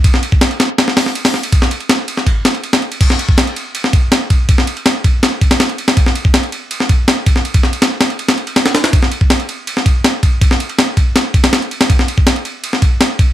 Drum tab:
CC |----------------|----------------|x---------------|----------------|
RD |x-x-xxx-x---x--x|x-xxx-x-x-xxxxxx|x-x-xxx-x-x-x-x-|x-xxx-x-x-xxxxxx|
HH |----------o--o--|----------------|----------------|----------------|
SD |-o--o-o-oooo-oo-|-o--o--o--o--o--|-o--o----o--o---|-o--o---o--oo--o|
BD |o--o------------|o-------o-------|o--o------o---o-|o-----o---o-----|

CC |----------------|----------------|----------------|----------------|
RD |x-x-xxx-x-x-x-x-|xx-xx-xxxxxxxxxx|x-x-xxx-x-x-x-x-|x-xxx-x-x-xxxxxx|
HH |----------------|----------------|----------------|----------------|
SD |-o--o----o--o--o|--o-o-o--o--oooo|-o--o----o--o---|-o--o---o--oo--o|
BD |o--o------o---o-|-o--------------|o--o------o---o-|o-----o---o-----|

CC |----------------|
RD |x-x-xxx-x-x-x-x-|
HH |----------------|
SD |-o--o----o--o---|
BD |o--o------o---o-|